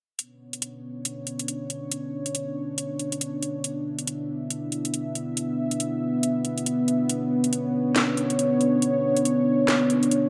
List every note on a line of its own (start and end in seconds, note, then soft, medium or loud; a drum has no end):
0.19 10.29 B3 medium
0.19 10.29 D4 medium
0.19 3.63 C#5 medium
0.19 closed hi-hat medium
0.53 closed hi-hat soft
0.62 closed hi-hat medium
1.05 closed hi-hat medium
1.27 closed hi-hat soft
1.39 closed hi-hat medium
1.48 closed hi-hat medium
1.70 closed hi-hat soft
1.92 closed hi-hat medium
2.26 closed hi-hat soft
2.35 closed hi-hat medium
2.78 closed hi-hat medium
2.99 closed hi-hat soft
3.12 closed hi-hat medium
3.21 closed hi-hat medium
3.43 closed hi-hat medium
3.64 7.08 E5 medium
3.64 closed hi-hat medium
3.99 closed hi-hat soft
4.07 closed hi-hat medium
4.50 closed hi-hat medium
4.72 closed hi-hat soft
4.85 closed hi-hat soft
4.94 closed hi-hat medium
5.15 closed hi-hat soft
5.37 closed hi-hat medium
5.71 closed hi-hat soft
5.80 closed hi-hat medium
6.23 closed hi-hat medium
6.45 closed hi-hat soft
6.58 closed hi-hat soft
6.66 closed hi-hat medium
6.88 closed hi-hat soft
7.09 10.29 C#5 medium
7.09 closed hi-hat medium
7.44 closed hi-hat soft
7.53 closed hi-hat medium
7.96 snare loud
7.96 closed hi-hat medium
8.17 closed hi-hat soft
8.30 closed hi-hat soft
8.39 closed hi-hat medium
8.61 closed hi-hat soft
8.82 closed hi-hat medium
9.17 closed hi-hat soft
9.25 closed hi-hat medium
9.68 snare loud
9.68 closed hi-hat medium
9.90 closed hi-hat soft
10.03 closed hi-hat soft
10.11 closed hi-hat medium